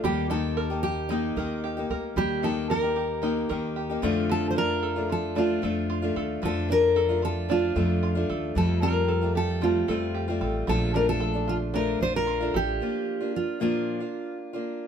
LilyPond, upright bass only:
\new Staff \with { instrumentName = "Upright bass" } { \clef bass \time 4/4 \key bes \major \tempo 4 = 113 ees,2~ ees,8 ees,4 d,8 | ees,2~ ees,8 ees,4 f,8~ | f,2~ f,8 f,4 ees,8 | f,2~ f,8 f,4 ees,8 |
f,2~ f,8 f,4 a,,8 | bes,,2~ bes,,8 bes,,4 a,,8 | r1 | }